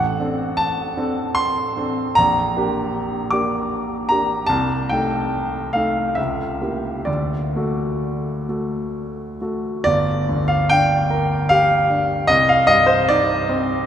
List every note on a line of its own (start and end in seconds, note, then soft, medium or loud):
0.00 0.20 A1 medium
0.00 0.58 F#5 loud
0.20 0.93 C4 soft
0.20 0.93 D4 soft
0.20 0.94 A4 soft
0.57 1.36 A5 loud
0.97 1.72 C4 soft
0.97 1.72 D4 soft
0.97 1.73 A4 medium
1.35 2.16 C6 loud
1.77 2.13 C4 soft
1.77 2.14 D4 soft
1.77 2.14 A4 soft
2.15 2.56 A#1 medium
2.15 3.33 A#5 loud
2.57 3.29 A#3 medium
2.57 3.30 D4 medium
2.57 3.30 G4 medium
3.31 4.06 A#3 soft
3.31 4.06 D4 soft
3.31 4.06 G4 soft
3.31 3.70 D6 medium
4.09 4.46 A#3 soft
4.09 4.46 D4 soft
4.09 4.46 G4 soft
4.09 4.49 A#5 medium
4.46 4.89 C2 medium
4.46 4.88 A5 loud
4.89 5.71 A3 soft
4.89 5.71 D#4 soft
4.89 5.71 A4 soft
4.89 5.74 G5 medium
5.73 6.14 A3 soft
5.73 6.14 D#4 soft
5.73 6.15 A4 soft
5.73 6.17 F5 medium
6.15 6.60 C#2 medium
6.15 7.06 E5 medium
6.61 7.03 A#3 soft
6.61 7.03 E4 soft
6.61 7.03 G4 soft
7.05 7.53 D2 medium
7.05 9.39 D5 medium
7.56 8.44 A3 soft
7.56 8.45 F#4 soft
7.56 8.45 A4 soft
8.49 9.37 A3 soft
8.49 9.37 F#4 soft
8.49 9.37 A4 soft
9.41 9.82 A3 soft
9.41 9.82 F#4 soft
9.41 9.82 A4 soft
9.84 12.25 G1 medium
9.84 10.48 D5 loud
10.29 10.94 D2 medium
10.48 10.69 F5 medium
10.70 11.34 D4 medium
10.70 11.49 G5 loud
11.10 11.73 A#4 medium
11.49 12.14 G4 medium
11.49 12.29 F5 loud
11.90 12.30 D4 soft
12.27 13.86 C2 medium
12.27 12.48 D#5 loud
12.49 12.69 F5 medium
12.67 13.33 G2 medium
12.67 12.88 D#5 loud
12.86 13.08 C5 medium
13.09 13.73 D#4 medium
13.09 13.86 D5 loud
13.49 13.86 C4 medium